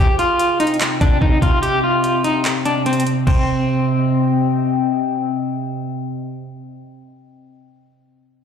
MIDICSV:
0, 0, Header, 1, 4, 480
1, 0, Start_track
1, 0, Key_signature, -3, "minor"
1, 0, Tempo, 410959
1, 1902, Time_signature, 4, 2, 24, 8
1, 9860, End_track
2, 0, Start_track
2, 0, Title_t, "Ambient pad"
2, 0, Program_c, 0, 92
2, 0, Note_on_c, 0, 48, 86
2, 0, Note_on_c, 0, 60, 80
2, 0, Note_on_c, 0, 75, 78
2, 0, Note_on_c, 0, 79, 95
2, 3784, Note_off_c, 0, 48, 0
2, 3784, Note_off_c, 0, 60, 0
2, 3784, Note_off_c, 0, 75, 0
2, 3784, Note_off_c, 0, 79, 0
2, 3821, Note_on_c, 0, 48, 85
2, 3821, Note_on_c, 0, 60, 77
2, 3821, Note_on_c, 0, 75, 77
2, 3821, Note_on_c, 0, 79, 97
2, 8160, Note_off_c, 0, 75, 0
2, 8160, Note_off_c, 0, 79, 0
2, 8161, Note_off_c, 0, 48, 0
2, 8161, Note_off_c, 0, 60, 0
2, 9860, End_track
3, 0, Start_track
3, 0, Title_t, "Clean electric guitar"
3, 0, Program_c, 1, 27
3, 0, Note_on_c, 1, 67, 104
3, 165, Note_off_c, 1, 67, 0
3, 222, Note_on_c, 1, 65, 88
3, 673, Note_off_c, 1, 65, 0
3, 700, Note_on_c, 1, 63, 75
3, 885, Note_off_c, 1, 63, 0
3, 1180, Note_on_c, 1, 62, 84
3, 1365, Note_off_c, 1, 62, 0
3, 1422, Note_on_c, 1, 63, 79
3, 1606, Note_off_c, 1, 63, 0
3, 1659, Note_on_c, 1, 65, 83
3, 1844, Note_off_c, 1, 65, 0
3, 1898, Note_on_c, 1, 67, 116
3, 2084, Note_off_c, 1, 67, 0
3, 2145, Note_on_c, 1, 65, 72
3, 2595, Note_off_c, 1, 65, 0
3, 2621, Note_on_c, 1, 63, 83
3, 2805, Note_off_c, 1, 63, 0
3, 3102, Note_on_c, 1, 62, 79
3, 3286, Note_off_c, 1, 62, 0
3, 3342, Note_on_c, 1, 60, 81
3, 3526, Note_off_c, 1, 60, 0
3, 3818, Note_on_c, 1, 60, 83
3, 5213, Note_off_c, 1, 60, 0
3, 9860, End_track
4, 0, Start_track
4, 0, Title_t, "Drums"
4, 222, Note_on_c, 9, 42, 70
4, 338, Note_off_c, 9, 42, 0
4, 461, Note_on_c, 9, 42, 82
4, 578, Note_off_c, 9, 42, 0
4, 701, Note_on_c, 9, 42, 61
4, 782, Note_off_c, 9, 42, 0
4, 782, Note_on_c, 9, 42, 49
4, 862, Note_off_c, 9, 42, 0
4, 862, Note_on_c, 9, 42, 37
4, 941, Note_off_c, 9, 42, 0
4, 941, Note_on_c, 9, 39, 102
4, 941, Note_on_c, 9, 42, 76
4, 1058, Note_off_c, 9, 39, 0
4, 1058, Note_off_c, 9, 42, 0
4, 1181, Note_on_c, 9, 36, 94
4, 1181, Note_on_c, 9, 42, 75
4, 1298, Note_off_c, 9, 36, 0
4, 1298, Note_off_c, 9, 42, 0
4, 1421, Note_on_c, 9, 36, 89
4, 1538, Note_off_c, 9, 36, 0
4, 1661, Note_on_c, 9, 36, 90
4, 1662, Note_on_c, 9, 42, 79
4, 1778, Note_off_c, 9, 36, 0
4, 1779, Note_off_c, 9, 42, 0
4, 1902, Note_on_c, 9, 42, 70
4, 2018, Note_off_c, 9, 42, 0
4, 2381, Note_on_c, 9, 42, 79
4, 2498, Note_off_c, 9, 42, 0
4, 2621, Note_on_c, 9, 42, 56
4, 2738, Note_off_c, 9, 42, 0
4, 2861, Note_on_c, 9, 42, 75
4, 2862, Note_on_c, 9, 39, 102
4, 2978, Note_off_c, 9, 42, 0
4, 2979, Note_off_c, 9, 39, 0
4, 3101, Note_on_c, 9, 42, 74
4, 3218, Note_off_c, 9, 42, 0
4, 3341, Note_on_c, 9, 42, 55
4, 3421, Note_off_c, 9, 42, 0
4, 3421, Note_on_c, 9, 42, 71
4, 3501, Note_off_c, 9, 42, 0
4, 3501, Note_on_c, 9, 42, 85
4, 3581, Note_off_c, 9, 42, 0
4, 3581, Note_on_c, 9, 42, 75
4, 3698, Note_off_c, 9, 42, 0
4, 3821, Note_on_c, 9, 36, 103
4, 3821, Note_on_c, 9, 49, 83
4, 3938, Note_off_c, 9, 36, 0
4, 3938, Note_off_c, 9, 49, 0
4, 9860, End_track
0, 0, End_of_file